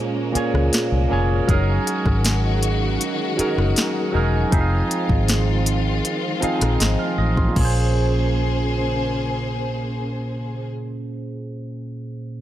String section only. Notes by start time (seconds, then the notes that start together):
Already playing: G#3 A#3 C#4
1.49 D#3 F#4
4.52 D#3 C4 F4
7.56 C#3 A#3 G#4 C5